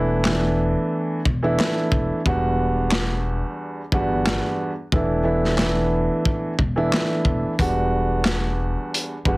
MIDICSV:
0, 0, Header, 1, 4, 480
1, 0, Start_track
1, 0, Key_signature, 1, "minor"
1, 0, Tempo, 666667
1, 1624, Time_signature, 4, 2, 24, 8
1, 6748, End_track
2, 0, Start_track
2, 0, Title_t, "Upright piano"
2, 0, Program_c, 0, 0
2, 0, Note_on_c, 0, 52, 88
2, 0, Note_on_c, 0, 57, 82
2, 0, Note_on_c, 0, 59, 82
2, 0, Note_on_c, 0, 62, 79
2, 0, Note_on_c, 0, 64, 101
2, 157, Note_off_c, 0, 52, 0
2, 158, Note_off_c, 0, 57, 0
2, 160, Note_off_c, 0, 59, 0
2, 161, Note_off_c, 0, 62, 0
2, 163, Note_off_c, 0, 64, 0
2, 188, Note_on_c, 0, 52, 95
2, 191, Note_on_c, 0, 57, 79
2, 194, Note_on_c, 0, 59, 86
2, 197, Note_on_c, 0, 62, 87
2, 200, Note_on_c, 0, 64, 90
2, 853, Note_off_c, 0, 52, 0
2, 855, Note_off_c, 0, 57, 0
2, 856, Note_off_c, 0, 59, 0
2, 858, Note_off_c, 0, 62, 0
2, 859, Note_off_c, 0, 64, 0
2, 1026, Note_on_c, 0, 52, 94
2, 1029, Note_on_c, 0, 57, 84
2, 1033, Note_on_c, 0, 59, 84
2, 1036, Note_on_c, 0, 62, 83
2, 1038, Note_on_c, 0, 64, 105
2, 1576, Note_off_c, 0, 52, 0
2, 1577, Note_off_c, 0, 57, 0
2, 1579, Note_off_c, 0, 59, 0
2, 1581, Note_off_c, 0, 62, 0
2, 1582, Note_off_c, 0, 64, 0
2, 1625, Note_on_c, 0, 40, 91
2, 1628, Note_on_c, 0, 55, 80
2, 1631, Note_on_c, 0, 59, 81
2, 1634, Note_on_c, 0, 62, 80
2, 1637, Note_on_c, 0, 66, 103
2, 2737, Note_off_c, 0, 40, 0
2, 2738, Note_off_c, 0, 55, 0
2, 2740, Note_off_c, 0, 59, 0
2, 2742, Note_off_c, 0, 62, 0
2, 2743, Note_off_c, 0, 66, 0
2, 2823, Note_on_c, 0, 40, 93
2, 2826, Note_on_c, 0, 55, 84
2, 2829, Note_on_c, 0, 59, 85
2, 2832, Note_on_c, 0, 62, 79
2, 2835, Note_on_c, 0, 66, 102
2, 3382, Note_off_c, 0, 40, 0
2, 3383, Note_off_c, 0, 55, 0
2, 3385, Note_off_c, 0, 59, 0
2, 3386, Note_off_c, 0, 62, 0
2, 3388, Note_off_c, 0, 66, 0
2, 3549, Note_on_c, 0, 52, 90
2, 3552, Note_on_c, 0, 57, 86
2, 3555, Note_on_c, 0, 59, 82
2, 3557, Note_on_c, 0, 62, 84
2, 3561, Note_on_c, 0, 64, 96
2, 3757, Note_off_c, 0, 52, 0
2, 3760, Note_off_c, 0, 57, 0
2, 3764, Note_off_c, 0, 59, 0
2, 3766, Note_off_c, 0, 62, 0
2, 3768, Note_on_c, 0, 52, 88
2, 3769, Note_off_c, 0, 64, 0
2, 3770, Note_on_c, 0, 57, 82
2, 3774, Note_on_c, 0, 59, 82
2, 3777, Note_on_c, 0, 62, 82
2, 3780, Note_on_c, 0, 64, 99
2, 3998, Note_off_c, 0, 52, 0
2, 4000, Note_off_c, 0, 57, 0
2, 4002, Note_off_c, 0, 59, 0
2, 4003, Note_off_c, 0, 62, 0
2, 4004, Note_off_c, 0, 64, 0
2, 4032, Note_on_c, 0, 52, 97
2, 4035, Note_on_c, 0, 57, 80
2, 4038, Note_on_c, 0, 59, 88
2, 4041, Note_on_c, 0, 62, 83
2, 4044, Note_on_c, 0, 64, 92
2, 4695, Note_off_c, 0, 52, 0
2, 4697, Note_off_c, 0, 57, 0
2, 4698, Note_off_c, 0, 59, 0
2, 4700, Note_off_c, 0, 62, 0
2, 4702, Note_off_c, 0, 64, 0
2, 4866, Note_on_c, 0, 52, 91
2, 4869, Note_on_c, 0, 57, 81
2, 4872, Note_on_c, 0, 59, 83
2, 4875, Note_on_c, 0, 62, 85
2, 4878, Note_on_c, 0, 64, 107
2, 5416, Note_off_c, 0, 52, 0
2, 5417, Note_off_c, 0, 57, 0
2, 5419, Note_off_c, 0, 59, 0
2, 5420, Note_off_c, 0, 62, 0
2, 5422, Note_off_c, 0, 64, 0
2, 5465, Note_on_c, 0, 40, 88
2, 5468, Note_on_c, 0, 55, 77
2, 5471, Note_on_c, 0, 59, 79
2, 5474, Note_on_c, 0, 62, 83
2, 5477, Note_on_c, 0, 66, 102
2, 6577, Note_off_c, 0, 40, 0
2, 6578, Note_off_c, 0, 55, 0
2, 6580, Note_off_c, 0, 59, 0
2, 6581, Note_off_c, 0, 62, 0
2, 6583, Note_off_c, 0, 66, 0
2, 6663, Note_on_c, 0, 40, 92
2, 6666, Note_on_c, 0, 55, 86
2, 6669, Note_on_c, 0, 59, 85
2, 6672, Note_on_c, 0, 62, 80
2, 6675, Note_on_c, 0, 66, 101
2, 6748, Note_off_c, 0, 40, 0
2, 6748, Note_off_c, 0, 55, 0
2, 6748, Note_off_c, 0, 59, 0
2, 6748, Note_off_c, 0, 62, 0
2, 6748, Note_off_c, 0, 66, 0
2, 6748, End_track
3, 0, Start_track
3, 0, Title_t, "Upright bass"
3, 0, Program_c, 1, 32
3, 0, Note_on_c, 1, 28, 103
3, 527, Note_off_c, 1, 28, 0
3, 905, Note_on_c, 1, 28, 90
3, 1113, Note_off_c, 1, 28, 0
3, 1382, Note_on_c, 1, 28, 86
3, 1496, Note_off_c, 1, 28, 0
3, 1627, Note_on_c, 1, 28, 105
3, 2447, Note_off_c, 1, 28, 0
3, 2825, Note_on_c, 1, 31, 91
3, 3146, Note_off_c, 1, 31, 0
3, 3546, Note_on_c, 1, 28, 103
3, 4367, Note_off_c, 1, 28, 0
3, 4745, Note_on_c, 1, 28, 88
3, 4952, Note_off_c, 1, 28, 0
3, 5222, Note_on_c, 1, 28, 84
3, 5336, Note_off_c, 1, 28, 0
3, 5467, Note_on_c, 1, 28, 102
3, 6287, Note_off_c, 1, 28, 0
3, 6665, Note_on_c, 1, 31, 88
3, 6748, Note_off_c, 1, 31, 0
3, 6748, End_track
4, 0, Start_track
4, 0, Title_t, "Drums"
4, 178, Note_on_c, 9, 39, 94
4, 183, Note_on_c, 9, 38, 112
4, 250, Note_off_c, 9, 39, 0
4, 255, Note_off_c, 9, 38, 0
4, 903, Note_on_c, 9, 36, 96
4, 975, Note_off_c, 9, 36, 0
4, 1149, Note_on_c, 9, 39, 96
4, 1154, Note_on_c, 9, 38, 119
4, 1221, Note_off_c, 9, 39, 0
4, 1226, Note_off_c, 9, 38, 0
4, 1380, Note_on_c, 9, 36, 91
4, 1452, Note_off_c, 9, 36, 0
4, 1625, Note_on_c, 9, 36, 106
4, 1697, Note_off_c, 9, 36, 0
4, 2098, Note_on_c, 9, 39, 94
4, 2103, Note_on_c, 9, 38, 120
4, 2170, Note_off_c, 9, 39, 0
4, 2175, Note_off_c, 9, 38, 0
4, 2823, Note_on_c, 9, 36, 94
4, 2895, Note_off_c, 9, 36, 0
4, 3070, Note_on_c, 9, 39, 97
4, 3075, Note_on_c, 9, 38, 116
4, 3142, Note_off_c, 9, 39, 0
4, 3147, Note_off_c, 9, 38, 0
4, 3544, Note_on_c, 9, 36, 113
4, 3616, Note_off_c, 9, 36, 0
4, 3922, Note_on_c, 9, 38, 31
4, 3994, Note_off_c, 9, 38, 0
4, 4019, Note_on_c, 9, 39, 93
4, 4024, Note_on_c, 9, 38, 114
4, 4091, Note_off_c, 9, 39, 0
4, 4096, Note_off_c, 9, 38, 0
4, 4503, Note_on_c, 9, 36, 91
4, 4575, Note_off_c, 9, 36, 0
4, 4743, Note_on_c, 9, 36, 95
4, 4815, Note_off_c, 9, 36, 0
4, 4990, Note_on_c, 9, 39, 98
4, 4995, Note_on_c, 9, 38, 115
4, 5062, Note_off_c, 9, 39, 0
4, 5067, Note_off_c, 9, 38, 0
4, 5220, Note_on_c, 9, 36, 94
4, 5292, Note_off_c, 9, 36, 0
4, 5464, Note_on_c, 9, 36, 108
4, 5469, Note_on_c, 9, 42, 77
4, 5536, Note_off_c, 9, 36, 0
4, 5541, Note_off_c, 9, 42, 0
4, 5938, Note_on_c, 9, 39, 91
4, 5943, Note_on_c, 9, 42, 72
4, 5944, Note_on_c, 9, 38, 120
4, 6010, Note_off_c, 9, 39, 0
4, 6015, Note_off_c, 9, 42, 0
4, 6016, Note_off_c, 9, 38, 0
4, 6439, Note_on_c, 9, 42, 111
4, 6511, Note_off_c, 9, 42, 0
4, 6663, Note_on_c, 9, 36, 100
4, 6735, Note_off_c, 9, 36, 0
4, 6748, End_track
0, 0, End_of_file